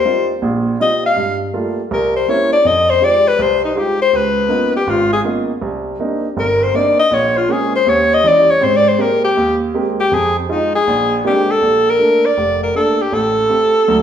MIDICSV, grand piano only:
0, 0, Header, 1, 2, 480
1, 0, Start_track
1, 0, Key_signature, -3, "major"
1, 0, Tempo, 371747
1, 1495, Time_signature, 4, 2, 24, 8
1, 8699, Tempo, 375235
1, 18019, End_track
2, 0, Start_track
2, 0, Title_t, "Grand piano"
2, 0, Program_c, 0, 0
2, 61, Note_on_c, 0, 55, 51
2, 64, Note_on_c, 0, 60, 48
2, 67, Note_on_c, 0, 63, 47
2, 71, Note_on_c, 0, 65, 58
2, 388, Note_off_c, 0, 55, 0
2, 390, Note_off_c, 0, 60, 0
2, 391, Note_off_c, 0, 63, 0
2, 394, Note_off_c, 0, 65, 0
2, 542, Note_on_c, 0, 34, 72
2, 547, Note_on_c, 0, 46, 76
2, 954, Note_off_c, 0, 34, 0
2, 957, Note_off_c, 0, 46, 0
2, 1027, Note_on_c, 0, 55, 54
2, 1030, Note_on_c, 0, 63, 50
2, 1032, Note_on_c, 0, 60, 50
2, 1037, Note_on_c, 0, 65, 61
2, 1350, Note_off_c, 0, 55, 0
2, 1352, Note_off_c, 0, 63, 0
2, 1353, Note_off_c, 0, 60, 0
2, 1356, Note_off_c, 0, 65, 0
2, 1503, Note_on_c, 0, 43, 65
2, 1914, Note_off_c, 0, 43, 0
2, 1980, Note_on_c, 0, 55, 53
2, 1987, Note_on_c, 0, 57, 50
2, 1987, Note_on_c, 0, 58, 49
2, 1990, Note_on_c, 0, 65, 59
2, 2306, Note_off_c, 0, 55, 0
2, 2309, Note_off_c, 0, 57, 0
2, 2310, Note_off_c, 0, 58, 0
2, 2311, Note_off_c, 0, 65, 0
2, 2468, Note_on_c, 0, 36, 75
2, 2876, Note_off_c, 0, 36, 0
2, 2948, Note_on_c, 0, 58, 59
2, 2949, Note_on_c, 0, 60, 48
2, 2951, Note_on_c, 0, 61, 51
2, 2956, Note_on_c, 0, 64, 65
2, 3270, Note_off_c, 0, 58, 0
2, 3270, Note_off_c, 0, 60, 0
2, 3271, Note_off_c, 0, 61, 0
2, 3273, Note_off_c, 0, 64, 0
2, 3419, Note_on_c, 0, 41, 68
2, 3831, Note_off_c, 0, 41, 0
2, 3893, Note_on_c, 0, 56, 53
2, 3895, Note_on_c, 0, 63, 50
2, 3900, Note_on_c, 0, 65, 48
2, 3904, Note_on_c, 0, 67, 58
2, 4222, Note_off_c, 0, 56, 0
2, 4222, Note_off_c, 0, 63, 0
2, 4225, Note_off_c, 0, 65, 0
2, 4227, Note_off_c, 0, 67, 0
2, 4376, Note_on_c, 0, 36, 75
2, 4789, Note_off_c, 0, 36, 0
2, 4848, Note_on_c, 0, 56, 55
2, 4852, Note_on_c, 0, 63, 52
2, 4857, Note_on_c, 0, 65, 51
2, 4861, Note_on_c, 0, 67, 60
2, 5179, Note_off_c, 0, 56, 0
2, 5181, Note_off_c, 0, 63, 0
2, 5184, Note_off_c, 0, 65, 0
2, 5186, Note_off_c, 0, 67, 0
2, 5330, Note_on_c, 0, 37, 64
2, 5746, Note_off_c, 0, 37, 0
2, 5794, Note_on_c, 0, 58, 54
2, 5794, Note_on_c, 0, 59, 50
2, 5799, Note_on_c, 0, 61, 47
2, 5806, Note_on_c, 0, 63, 47
2, 5806, Note_on_c, 0, 65, 57
2, 6133, Note_off_c, 0, 58, 0
2, 6133, Note_off_c, 0, 59, 0
2, 6135, Note_off_c, 0, 61, 0
2, 6138, Note_off_c, 0, 63, 0
2, 6138, Note_off_c, 0, 65, 0
2, 6290, Note_on_c, 0, 32, 76
2, 6707, Note_off_c, 0, 32, 0
2, 6770, Note_on_c, 0, 58, 54
2, 6775, Note_on_c, 0, 59, 50
2, 6776, Note_on_c, 0, 61, 49
2, 6778, Note_on_c, 0, 65, 59
2, 6780, Note_on_c, 0, 63, 50
2, 7102, Note_off_c, 0, 58, 0
2, 7104, Note_off_c, 0, 59, 0
2, 7105, Note_off_c, 0, 61, 0
2, 7106, Note_off_c, 0, 65, 0
2, 7107, Note_off_c, 0, 63, 0
2, 7251, Note_on_c, 0, 36, 68
2, 7669, Note_off_c, 0, 36, 0
2, 7742, Note_on_c, 0, 60, 49
2, 7743, Note_on_c, 0, 58, 52
2, 7745, Note_on_c, 0, 62, 46
2, 7752, Note_on_c, 0, 63, 61
2, 8069, Note_off_c, 0, 60, 0
2, 8070, Note_off_c, 0, 58, 0
2, 8071, Note_off_c, 0, 62, 0
2, 8074, Note_off_c, 0, 63, 0
2, 8220, Note_on_c, 0, 31, 73
2, 8636, Note_off_c, 0, 31, 0
2, 8705, Note_on_c, 0, 58, 60
2, 8710, Note_on_c, 0, 60, 52
2, 8715, Note_on_c, 0, 62, 50
2, 8718, Note_on_c, 0, 63, 60
2, 9030, Note_off_c, 0, 58, 0
2, 9032, Note_off_c, 0, 60, 0
2, 9035, Note_off_c, 0, 62, 0
2, 9037, Note_off_c, 0, 63, 0
2, 9176, Note_on_c, 0, 34, 73
2, 9180, Note_on_c, 0, 46, 65
2, 9591, Note_off_c, 0, 34, 0
2, 9592, Note_off_c, 0, 46, 0
2, 9658, Note_on_c, 0, 56, 57
2, 9659, Note_on_c, 0, 58, 49
2, 9664, Note_on_c, 0, 60, 51
2, 9664, Note_on_c, 0, 61, 63
2, 9985, Note_off_c, 0, 56, 0
2, 9986, Note_off_c, 0, 58, 0
2, 9988, Note_off_c, 0, 60, 0
2, 9988, Note_off_c, 0, 61, 0
2, 10138, Note_on_c, 0, 39, 76
2, 10550, Note_off_c, 0, 39, 0
2, 10619, Note_on_c, 0, 52, 57
2, 10619, Note_on_c, 0, 55, 54
2, 10624, Note_on_c, 0, 61, 55
2, 10628, Note_on_c, 0, 63, 61
2, 10945, Note_off_c, 0, 52, 0
2, 10945, Note_off_c, 0, 55, 0
2, 10947, Note_off_c, 0, 61, 0
2, 10949, Note_off_c, 0, 63, 0
2, 11096, Note_on_c, 0, 60, 73
2, 11099, Note_on_c, 0, 44, 74
2, 11509, Note_off_c, 0, 60, 0
2, 11510, Note_off_c, 0, 44, 0
2, 11571, Note_on_c, 0, 56, 57
2, 11574, Note_on_c, 0, 58, 54
2, 11580, Note_on_c, 0, 60, 53
2, 11582, Note_on_c, 0, 67, 67
2, 11900, Note_off_c, 0, 56, 0
2, 11902, Note_off_c, 0, 58, 0
2, 11905, Note_off_c, 0, 60, 0
2, 11906, Note_off_c, 0, 67, 0
2, 12066, Note_on_c, 0, 39, 78
2, 12474, Note_off_c, 0, 39, 0
2, 12546, Note_on_c, 0, 56, 63
2, 12548, Note_on_c, 0, 58, 57
2, 12551, Note_on_c, 0, 67, 62
2, 12555, Note_on_c, 0, 60, 56
2, 12867, Note_off_c, 0, 56, 0
2, 12869, Note_off_c, 0, 58, 0
2, 12870, Note_off_c, 0, 67, 0
2, 12872, Note_off_c, 0, 60, 0
2, 13019, Note_on_c, 0, 41, 67
2, 13430, Note_off_c, 0, 41, 0
2, 13500, Note_on_c, 0, 56, 58
2, 13504, Note_on_c, 0, 63, 54
2, 13509, Note_on_c, 0, 65, 65
2, 13825, Note_off_c, 0, 56, 0
2, 13827, Note_off_c, 0, 63, 0
2, 13829, Note_off_c, 0, 65, 0
2, 13989, Note_on_c, 0, 34, 84
2, 14396, Note_off_c, 0, 34, 0
2, 14466, Note_on_c, 0, 56, 63
2, 14469, Note_on_c, 0, 58, 55
2, 14470, Note_on_c, 0, 60, 55
2, 14474, Note_on_c, 0, 62, 56
2, 14475, Note_on_c, 0, 67, 63
2, 14789, Note_off_c, 0, 56, 0
2, 14790, Note_off_c, 0, 58, 0
2, 14791, Note_off_c, 0, 60, 0
2, 14793, Note_off_c, 0, 62, 0
2, 14793, Note_off_c, 0, 67, 0
2, 14946, Note_on_c, 0, 34, 59
2, 15356, Note_off_c, 0, 34, 0
2, 15418, Note_on_c, 0, 57, 48
2, 15424, Note_on_c, 0, 58, 42
2, 15428, Note_on_c, 0, 62, 52
2, 15746, Note_off_c, 0, 57, 0
2, 15749, Note_off_c, 0, 58, 0
2, 15751, Note_off_c, 0, 62, 0
2, 15905, Note_on_c, 0, 29, 65
2, 16317, Note_off_c, 0, 29, 0
2, 16388, Note_on_c, 0, 57, 50
2, 16394, Note_on_c, 0, 58, 44
2, 16396, Note_on_c, 0, 62, 56
2, 16713, Note_off_c, 0, 57, 0
2, 16716, Note_off_c, 0, 58, 0
2, 16717, Note_off_c, 0, 62, 0
2, 16868, Note_on_c, 0, 33, 66
2, 17280, Note_off_c, 0, 33, 0
2, 17345, Note_on_c, 0, 57, 51
2, 17351, Note_on_c, 0, 60, 48
2, 17356, Note_on_c, 0, 67, 57
2, 17673, Note_off_c, 0, 57, 0
2, 17676, Note_off_c, 0, 60, 0
2, 17678, Note_off_c, 0, 67, 0
2, 17838, Note_on_c, 0, 54, 67
2, 17839, Note_on_c, 0, 38, 72
2, 18019, Note_off_c, 0, 38, 0
2, 18019, Note_off_c, 0, 54, 0
2, 18019, End_track
0, 0, End_of_file